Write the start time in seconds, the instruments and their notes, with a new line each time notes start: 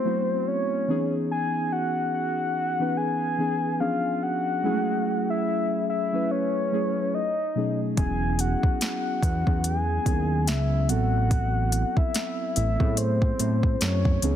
Already playing: synth keys A3 B3 C4 E4 F#4, soft synth lead C5
0.04 synth keys F#3 A3 C4 E4 F#4
0.48 soft synth lead C#5
0.88 synth keys E3 B3 C#4 D#4 G#4
1.31 soft synth lead G#5
1.72 soft synth lead F#5
2.14 soft synth lead F#5
2.79 synth keys E3 B3 C#4 D#4 B4
2.97 soft synth lead G#5
3.38 synth keys E3 B3 C#4 D#4 G#4
3.80 synth keys F3 B3 C#4 D4 G#4, soft synth lead F5
4.23 soft synth lead F#5
4.63 synth keys F#3 G#3 C#4 E4 G#4
4.70 synth keys A3
5.30 soft synth lead E5
5.89 soft synth lead E5
6.12 synth keys F#3 A3 C#4 E4 B4
6.31 soft synth lead C#5
6.71 synth keys F#3 A3 C#4 E4 G#4
7.14 soft synth lead D#5
7.55 synth keys B2 F#3 A3 C#4 D#4 G#4
7.96 analog synth bass E1, synth keys F#3 B3 C#4 E4 G#4, soft synth lead G#5, kick, closed hi-hat
8.39 soft synth lead F#5, closed hi-hat
8.63 analog synth bass E2, kick
8.81 soft synth lead F#5, snare, closed hi-hat
9.22 analog synth bass E2, kick, closed hi-hat
9.46 analog synth bass E2, synth keys F#3 B3 C#4 E4 G#4, kick
9.64 soft synth lead G#5, closed hi-hat
10.05 analog synth bass D#2, synth keys F#3 B3 C#4 E4 G#4, kick, closed hi-hat
10.47 analog synth bass C#2, soft synth lead E5, snare, closed hi-hat
10.88 analog synth bass A1, synth keys F#3 B3 C4 E4 A4, soft synth lead F#5, closed hi-hat
11.31 kick, closed hi-hat
11.72 closed hi-hat
11.97 analog synth bass A1, soft synth lead E5, kick
12.14 snare, closed hi-hat
12.56 analog synth bass A1, soft synth lead E5, closed hi-hat
12.79 analog synth bass A2, synth keys F#3 B3 C4 E4 G#4, kick
12.97 soft synth lead C5, closed hi-hat
13.22 kick
13.38 analog synth bass A2, synth keys F#3 A3 C4 E4 C5, closed hi-hat
13.63 kick
13.81 analog synth bass F#2, soft synth lead C#5, snare, closed hi-hat
14.05 kick
14.22 analog synth bass C#2, synth keys E3 B3 C#4 D#4 G#4, closed hi-hat